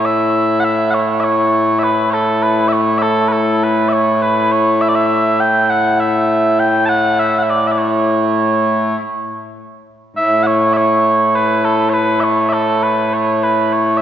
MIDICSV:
0, 0, Header, 1, 2, 480
1, 0, Start_track
1, 0, Key_signature, 3, "major"
1, 0, Tempo, 594059
1, 524, Time_signature, 4, 2, 24, 8
1, 11326, End_track
2, 0, Start_track
2, 0, Title_t, "Bagpipes"
2, 0, Program_c, 0, 109
2, 0, Note_on_c, 0, 45, 89
2, 0, Note_on_c, 0, 57, 89
2, 0, Note_on_c, 0, 64, 89
2, 43, Note_on_c, 0, 76, 100
2, 482, Note_off_c, 0, 76, 0
2, 482, Note_on_c, 0, 78, 97
2, 518, Note_off_c, 0, 78, 0
2, 518, Note_on_c, 0, 76, 97
2, 731, Note_off_c, 0, 76, 0
2, 731, Note_on_c, 0, 78, 87
2, 761, Note_off_c, 0, 78, 0
2, 761, Note_on_c, 0, 73, 87
2, 973, Note_off_c, 0, 73, 0
2, 973, Note_on_c, 0, 76, 87
2, 1002, Note_off_c, 0, 76, 0
2, 1002, Note_on_c, 0, 73, 87
2, 1447, Note_off_c, 0, 73, 0
2, 1447, Note_on_c, 0, 76, 88
2, 1482, Note_off_c, 0, 76, 0
2, 1482, Note_on_c, 0, 71, 88
2, 1698, Note_off_c, 0, 71, 0
2, 1698, Note_on_c, 0, 73, 92
2, 1726, Note_off_c, 0, 73, 0
2, 1726, Note_on_c, 0, 69, 92
2, 1961, Note_off_c, 0, 69, 0
2, 1961, Note_on_c, 0, 71, 90
2, 2169, Note_off_c, 0, 71, 0
2, 2169, Note_on_c, 0, 76, 97
2, 2203, Note_off_c, 0, 76, 0
2, 2203, Note_on_c, 0, 73, 97
2, 2410, Note_off_c, 0, 73, 0
2, 2410, Note_on_c, 0, 76, 96
2, 2442, Note_off_c, 0, 76, 0
2, 2442, Note_on_c, 0, 69, 96
2, 2652, Note_off_c, 0, 69, 0
2, 2652, Note_on_c, 0, 71, 83
2, 2685, Note_off_c, 0, 71, 0
2, 2685, Note_on_c, 0, 69, 83
2, 2937, Note_off_c, 0, 69, 0
2, 2937, Note_on_c, 0, 71, 93
2, 3141, Note_off_c, 0, 71, 0
2, 3141, Note_on_c, 0, 76, 87
2, 3173, Note_off_c, 0, 76, 0
2, 3173, Note_on_c, 0, 73, 87
2, 3410, Note_off_c, 0, 73, 0
2, 3410, Note_on_c, 0, 71, 90
2, 3650, Note_off_c, 0, 71, 0
2, 3650, Note_on_c, 0, 73, 102
2, 3890, Note_off_c, 0, 73, 0
2, 3890, Note_on_c, 0, 76, 99
2, 3948, Note_off_c, 0, 76, 0
2, 3948, Note_on_c, 0, 74, 78
2, 4002, Note_off_c, 0, 74, 0
2, 4002, Note_on_c, 0, 76, 98
2, 4364, Note_off_c, 0, 76, 0
2, 4364, Note_on_c, 0, 79, 102
2, 4604, Note_off_c, 0, 79, 0
2, 4604, Note_on_c, 0, 78, 100
2, 4847, Note_off_c, 0, 78, 0
2, 4847, Note_on_c, 0, 76, 89
2, 5328, Note_off_c, 0, 76, 0
2, 5328, Note_on_c, 0, 79, 106
2, 5541, Note_off_c, 0, 79, 0
2, 5541, Note_on_c, 0, 81, 102
2, 5568, Note_off_c, 0, 81, 0
2, 5568, Note_on_c, 0, 78, 102
2, 5811, Note_off_c, 0, 78, 0
2, 5811, Note_on_c, 0, 76, 105
2, 5966, Note_off_c, 0, 76, 0
2, 5966, Note_on_c, 0, 78, 67
2, 6001, Note_off_c, 0, 78, 0
2, 6001, Note_on_c, 0, 76, 67
2, 6060, Note_off_c, 0, 76, 0
2, 6060, Note_on_c, 0, 74, 92
2, 6200, Note_off_c, 0, 74, 0
2, 6200, Note_on_c, 0, 76, 65
2, 6234, Note_off_c, 0, 76, 0
2, 6234, Note_on_c, 0, 74, 65
2, 6288, Note_off_c, 0, 74, 0
2, 6288, Note_on_c, 0, 73, 89
2, 7246, Note_off_c, 0, 45, 0
2, 7246, Note_off_c, 0, 57, 0
2, 7246, Note_off_c, 0, 64, 0
2, 7246, Note_off_c, 0, 73, 0
2, 8213, Note_on_c, 0, 45, 89
2, 8213, Note_on_c, 0, 57, 89
2, 8213, Note_on_c, 0, 64, 89
2, 8213, Note_on_c, 0, 76, 109
2, 8426, Note_off_c, 0, 76, 0
2, 8426, Note_on_c, 0, 78, 91
2, 8457, Note_off_c, 0, 78, 0
2, 8457, Note_on_c, 0, 73, 91
2, 8672, Note_off_c, 0, 73, 0
2, 8672, Note_on_c, 0, 76, 95
2, 8702, Note_off_c, 0, 76, 0
2, 8702, Note_on_c, 0, 73, 95
2, 9172, Note_off_c, 0, 73, 0
2, 9172, Note_on_c, 0, 71, 97
2, 9411, Note_off_c, 0, 71, 0
2, 9411, Note_on_c, 0, 69, 84
2, 9610, Note_off_c, 0, 69, 0
2, 9610, Note_on_c, 0, 73, 91
2, 9644, Note_off_c, 0, 73, 0
2, 9644, Note_on_c, 0, 71, 91
2, 9860, Note_off_c, 0, 71, 0
2, 9860, Note_on_c, 0, 76, 93
2, 9887, Note_off_c, 0, 76, 0
2, 9887, Note_on_c, 0, 73, 93
2, 10092, Note_off_c, 0, 73, 0
2, 10092, Note_on_c, 0, 76, 84
2, 10126, Note_off_c, 0, 76, 0
2, 10126, Note_on_c, 0, 69, 84
2, 10366, Note_off_c, 0, 69, 0
2, 10366, Note_on_c, 0, 71, 78
2, 10612, Note_off_c, 0, 71, 0
2, 10612, Note_on_c, 0, 73, 89
2, 10855, Note_off_c, 0, 73, 0
2, 10855, Note_on_c, 0, 71, 79
2, 11090, Note_off_c, 0, 71, 0
2, 11090, Note_on_c, 0, 73, 89
2, 11291, Note_off_c, 0, 73, 0
2, 11291, Note_on_c, 0, 76, 84
2, 11324, Note_off_c, 0, 76, 0
2, 11326, Note_off_c, 0, 45, 0
2, 11326, Note_off_c, 0, 57, 0
2, 11326, Note_off_c, 0, 64, 0
2, 11326, End_track
0, 0, End_of_file